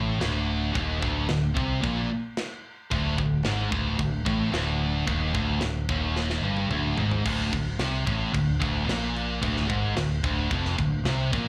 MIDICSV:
0, 0, Header, 1, 4, 480
1, 0, Start_track
1, 0, Tempo, 542495
1, 657, Time_signature, 4, 2, 24, 8
1, 10158, End_track
2, 0, Start_track
2, 0, Title_t, "Distorted electric guitar"
2, 0, Program_c, 0, 30
2, 0, Note_on_c, 0, 45, 100
2, 170, Note_off_c, 0, 45, 0
2, 177, Note_on_c, 0, 38, 110
2, 649, Note_off_c, 0, 38, 0
2, 652, Note_on_c, 0, 39, 108
2, 888, Note_off_c, 0, 39, 0
2, 898, Note_on_c, 0, 38, 97
2, 1130, Note_off_c, 0, 38, 0
2, 1142, Note_on_c, 0, 38, 78
2, 1331, Note_off_c, 0, 38, 0
2, 1372, Note_on_c, 0, 48, 102
2, 1607, Note_off_c, 0, 48, 0
2, 1611, Note_on_c, 0, 46, 105
2, 1846, Note_off_c, 0, 46, 0
2, 2572, Note_on_c, 0, 38, 106
2, 2806, Note_off_c, 0, 38, 0
2, 2820, Note_on_c, 0, 38, 74
2, 3008, Note_off_c, 0, 38, 0
2, 3050, Note_on_c, 0, 44, 105
2, 3284, Note_off_c, 0, 44, 0
2, 3291, Note_on_c, 0, 38, 104
2, 3518, Note_off_c, 0, 38, 0
2, 3528, Note_on_c, 0, 38, 78
2, 3722, Note_off_c, 0, 38, 0
2, 3761, Note_on_c, 0, 45, 103
2, 3993, Note_off_c, 0, 45, 0
2, 3997, Note_on_c, 0, 38, 112
2, 4477, Note_off_c, 0, 38, 0
2, 4484, Note_on_c, 0, 39, 104
2, 4721, Note_off_c, 0, 39, 0
2, 4725, Note_on_c, 0, 38, 104
2, 4955, Note_off_c, 0, 38, 0
2, 4965, Note_on_c, 0, 38, 78
2, 5161, Note_off_c, 0, 38, 0
2, 5219, Note_on_c, 0, 39, 97
2, 5688, Note_off_c, 0, 39, 0
2, 5696, Note_on_c, 0, 43, 102
2, 5926, Note_off_c, 0, 43, 0
2, 5930, Note_on_c, 0, 38, 114
2, 6164, Note_off_c, 0, 38, 0
2, 6173, Note_on_c, 0, 44, 103
2, 6406, Note_off_c, 0, 44, 0
2, 6419, Note_on_c, 0, 38, 110
2, 6648, Note_off_c, 0, 38, 0
2, 6665, Note_on_c, 0, 38, 72
2, 6851, Note_off_c, 0, 38, 0
2, 6902, Note_on_c, 0, 48, 108
2, 7130, Note_off_c, 0, 48, 0
2, 7134, Note_on_c, 0, 45, 104
2, 7366, Note_off_c, 0, 45, 0
2, 7373, Note_on_c, 0, 38, 77
2, 7566, Note_off_c, 0, 38, 0
2, 7608, Note_on_c, 0, 38, 104
2, 7838, Note_off_c, 0, 38, 0
2, 7842, Note_on_c, 0, 46, 112
2, 8322, Note_off_c, 0, 46, 0
2, 8331, Note_on_c, 0, 38, 108
2, 8563, Note_off_c, 0, 38, 0
2, 8567, Note_on_c, 0, 44, 98
2, 8805, Note_off_c, 0, 44, 0
2, 8818, Note_on_c, 0, 38, 77
2, 9010, Note_off_c, 0, 38, 0
2, 9062, Note_on_c, 0, 38, 111
2, 9294, Note_off_c, 0, 38, 0
2, 9306, Note_on_c, 0, 41, 106
2, 9533, Note_off_c, 0, 41, 0
2, 9536, Note_on_c, 0, 38, 77
2, 9731, Note_off_c, 0, 38, 0
2, 9783, Note_on_c, 0, 48, 105
2, 10016, Note_off_c, 0, 48, 0
2, 10019, Note_on_c, 0, 46, 106
2, 10158, Note_off_c, 0, 46, 0
2, 10158, End_track
3, 0, Start_track
3, 0, Title_t, "Picked electric bass"
3, 0, Program_c, 1, 34
3, 0, Note_on_c, 1, 33, 97
3, 165, Note_off_c, 1, 33, 0
3, 183, Note_on_c, 1, 26, 100
3, 627, Note_off_c, 1, 26, 0
3, 665, Note_on_c, 1, 27, 90
3, 884, Note_off_c, 1, 27, 0
3, 907, Note_on_c, 1, 26, 97
3, 1125, Note_off_c, 1, 26, 0
3, 1139, Note_on_c, 1, 26, 86
3, 1361, Note_off_c, 1, 26, 0
3, 1379, Note_on_c, 1, 36, 106
3, 1601, Note_off_c, 1, 36, 0
3, 1619, Note_on_c, 1, 34, 103
3, 1840, Note_off_c, 1, 34, 0
3, 2578, Note_on_c, 1, 26, 93
3, 2799, Note_off_c, 1, 26, 0
3, 2813, Note_on_c, 1, 26, 81
3, 3036, Note_off_c, 1, 26, 0
3, 3048, Note_on_c, 1, 32, 97
3, 3273, Note_off_c, 1, 32, 0
3, 3285, Note_on_c, 1, 26, 94
3, 3512, Note_off_c, 1, 26, 0
3, 3533, Note_on_c, 1, 26, 91
3, 3756, Note_off_c, 1, 26, 0
3, 3770, Note_on_c, 1, 33, 96
3, 3987, Note_off_c, 1, 33, 0
3, 3992, Note_on_c, 1, 26, 87
3, 4448, Note_off_c, 1, 26, 0
3, 4492, Note_on_c, 1, 27, 92
3, 4715, Note_off_c, 1, 27, 0
3, 4729, Note_on_c, 1, 26, 94
3, 4953, Note_off_c, 1, 26, 0
3, 4959, Note_on_c, 1, 26, 86
3, 5188, Note_off_c, 1, 26, 0
3, 5208, Note_on_c, 1, 27, 105
3, 5656, Note_off_c, 1, 27, 0
3, 5679, Note_on_c, 1, 31, 93
3, 5908, Note_off_c, 1, 31, 0
3, 5916, Note_on_c, 1, 26, 92
3, 6147, Note_off_c, 1, 26, 0
3, 6164, Note_on_c, 1, 32, 95
3, 6391, Note_off_c, 1, 32, 0
3, 6419, Note_on_c, 1, 26, 91
3, 6639, Note_off_c, 1, 26, 0
3, 6656, Note_on_c, 1, 26, 76
3, 6878, Note_off_c, 1, 26, 0
3, 6892, Note_on_c, 1, 36, 100
3, 7116, Note_off_c, 1, 36, 0
3, 7138, Note_on_c, 1, 33, 103
3, 7359, Note_off_c, 1, 33, 0
3, 7383, Note_on_c, 1, 26, 89
3, 7602, Note_off_c, 1, 26, 0
3, 7620, Note_on_c, 1, 26, 102
3, 7841, Note_off_c, 1, 26, 0
3, 7853, Note_on_c, 1, 34, 96
3, 8301, Note_off_c, 1, 34, 0
3, 8342, Note_on_c, 1, 26, 92
3, 8563, Note_off_c, 1, 26, 0
3, 8574, Note_on_c, 1, 32, 97
3, 8799, Note_off_c, 1, 32, 0
3, 8813, Note_on_c, 1, 26, 79
3, 9039, Note_off_c, 1, 26, 0
3, 9055, Note_on_c, 1, 26, 107
3, 9280, Note_off_c, 1, 26, 0
3, 9298, Note_on_c, 1, 29, 105
3, 9523, Note_off_c, 1, 29, 0
3, 9539, Note_on_c, 1, 26, 77
3, 9760, Note_off_c, 1, 26, 0
3, 9765, Note_on_c, 1, 36, 103
3, 9997, Note_off_c, 1, 36, 0
3, 10021, Note_on_c, 1, 34, 99
3, 10158, Note_off_c, 1, 34, 0
3, 10158, End_track
4, 0, Start_track
4, 0, Title_t, "Drums"
4, 187, Note_on_c, 9, 49, 63
4, 188, Note_on_c, 9, 38, 114
4, 275, Note_off_c, 9, 49, 0
4, 276, Note_off_c, 9, 38, 0
4, 667, Note_on_c, 9, 36, 107
4, 668, Note_on_c, 9, 49, 63
4, 755, Note_off_c, 9, 36, 0
4, 757, Note_off_c, 9, 49, 0
4, 907, Note_on_c, 9, 36, 105
4, 995, Note_off_c, 9, 36, 0
4, 1140, Note_on_c, 9, 38, 111
4, 1140, Note_on_c, 9, 49, 62
4, 1228, Note_off_c, 9, 49, 0
4, 1229, Note_off_c, 9, 38, 0
4, 1386, Note_on_c, 9, 36, 114
4, 1475, Note_off_c, 9, 36, 0
4, 1623, Note_on_c, 9, 49, 60
4, 1624, Note_on_c, 9, 36, 114
4, 1712, Note_off_c, 9, 49, 0
4, 1713, Note_off_c, 9, 36, 0
4, 2098, Note_on_c, 9, 49, 65
4, 2099, Note_on_c, 9, 38, 118
4, 2187, Note_off_c, 9, 49, 0
4, 2188, Note_off_c, 9, 38, 0
4, 2576, Note_on_c, 9, 49, 67
4, 2579, Note_on_c, 9, 36, 115
4, 2665, Note_off_c, 9, 49, 0
4, 2667, Note_off_c, 9, 36, 0
4, 2816, Note_on_c, 9, 36, 95
4, 2905, Note_off_c, 9, 36, 0
4, 3049, Note_on_c, 9, 49, 67
4, 3050, Note_on_c, 9, 38, 117
4, 3138, Note_off_c, 9, 49, 0
4, 3139, Note_off_c, 9, 38, 0
4, 3292, Note_on_c, 9, 36, 110
4, 3381, Note_off_c, 9, 36, 0
4, 3529, Note_on_c, 9, 49, 68
4, 3531, Note_on_c, 9, 36, 98
4, 3618, Note_off_c, 9, 49, 0
4, 3620, Note_off_c, 9, 36, 0
4, 3772, Note_on_c, 9, 36, 119
4, 3860, Note_off_c, 9, 36, 0
4, 4015, Note_on_c, 9, 49, 65
4, 4016, Note_on_c, 9, 38, 115
4, 4103, Note_off_c, 9, 49, 0
4, 4104, Note_off_c, 9, 38, 0
4, 4490, Note_on_c, 9, 36, 118
4, 4495, Note_on_c, 9, 49, 65
4, 4579, Note_off_c, 9, 36, 0
4, 4583, Note_off_c, 9, 49, 0
4, 4731, Note_on_c, 9, 36, 105
4, 4819, Note_off_c, 9, 36, 0
4, 4962, Note_on_c, 9, 49, 60
4, 4963, Note_on_c, 9, 38, 121
4, 5051, Note_off_c, 9, 49, 0
4, 5052, Note_off_c, 9, 38, 0
4, 5211, Note_on_c, 9, 36, 113
4, 5299, Note_off_c, 9, 36, 0
4, 5454, Note_on_c, 9, 38, 68
4, 5542, Note_off_c, 9, 38, 0
4, 5574, Note_on_c, 9, 38, 63
4, 5663, Note_off_c, 9, 38, 0
4, 5810, Note_on_c, 9, 48, 71
4, 5899, Note_off_c, 9, 48, 0
4, 5935, Note_on_c, 9, 47, 89
4, 6023, Note_off_c, 9, 47, 0
4, 6172, Note_on_c, 9, 43, 98
4, 6260, Note_off_c, 9, 43, 0
4, 6294, Note_on_c, 9, 43, 90
4, 6383, Note_off_c, 9, 43, 0
4, 6418, Note_on_c, 9, 49, 93
4, 6418, Note_on_c, 9, 57, 127
4, 6421, Note_on_c, 9, 36, 110
4, 6506, Note_off_c, 9, 49, 0
4, 6506, Note_off_c, 9, 57, 0
4, 6509, Note_off_c, 9, 36, 0
4, 6661, Note_on_c, 9, 36, 91
4, 6663, Note_on_c, 9, 49, 68
4, 6750, Note_off_c, 9, 36, 0
4, 6751, Note_off_c, 9, 49, 0
4, 6896, Note_on_c, 9, 49, 91
4, 6897, Note_on_c, 9, 38, 111
4, 6984, Note_off_c, 9, 49, 0
4, 6985, Note_off_c, 9, 38, 0
4, 7139, Note_on_c, 9, 49, 68
4, 7141, Note_on_c, 9, 36, 115
4, 7227, Note_off_c, 9, 49, 0
4, 7230, Note_off_c, 9, 36, 0
4, 7383, Note_on_c, 9, 36, 91
4, 7384, Note_on_c, 9, 49, 83
4, 7472, Note_off_c, 9, 36, 0
4, 7472, Note_off_c, 9, 49, 0
4, 7622, Note_on_c, 9, 49, 70
4, 7624, Note_on_c, 9, 36, 113
4, 7710, Note_off_c, 9, 49, 0
4, 7712, Note_off_c, 9, 36, 0
4, 7868, Note_on_c, 9, 49, 83
4, 7869, Note_on_c, 9, 38, 122
4, 7957, Note_off_c, 9, 49, 0
4, 7958, Note_off_c, 9, 38, 0
4, 8107, Note_on_c, 9, 49, 61
4, 8196, Note_off_c, 9, 49, 0
4, 8340, Note_on_c, 9, 49, 85
4, 8342, Note_on_c, 9, 36, 117
4, 8429, Note_off_c, 9, 49, 0
4, 8430, Note_off_c, 9, 36, 0
4, 8465, Note_on_c, 9, 38, 35
4, 8553, Note_off_c, 9, 38, 0
4, 8580, Note_on_c, 9, 36, 110
4, 8580, Note_on_c, 9, 49, 60
4, 8669, Note_off_c, 9, 36, 0
4, 8669, Note_off_c, 9, 49, 0
4, 8818, Note_on_c, 9, 49, 88
4, 8819, Note_on_c, 9, 38, 116
4, 8907, Note_off_c, 9, 49, 0
4, 8908, Note_off_c, 9, 38, 0
4, 9058, Note_on_c, 9, 49, 65
4, 9060, Note_on_c, 9, 36, 109
4, 9146, Note_off_c, 9, 49, 0
4, 9148, Note_off_c, 9, 36, 0
4, 9299, Note_on_c, 9, 36, 116
4, 9299, Note_on_c, 9, 49, 80
4, 9388, Note_off_c, 9, 36, 0
4, 9388, Note_off_c, 9, 49, 0
4, 9425, Note_on_c, 9, 38, 35
4, 9514, Note_off_c, 9, 38, 0
4, 9543, Note_on_c, 9, 36, 101
4, 9551, Note_on_c, 9, 49, 66
4, 9631, Note_off_c, 9, 36, 0
4, 9639, Note_off_c, 9, 49, 0
4, 9780, Note_on_c, 9, 49, 78
4, 9781, Note_on_c, 9, 38, 119
4, 9868, Note_off_c, 9, 49, 0
4, 9869, Note_off_c, 9, 38, 0
4, 10026, Note_on_c, 9, 36, 114
4, 10029, Note_on_c, 9, 49, 70
4, 10114, Note_off_c, 9, 36, 0
4, 10117, Note_off_c, 9, 49, 0
4, 10158, End_track
0, 0, End_of_file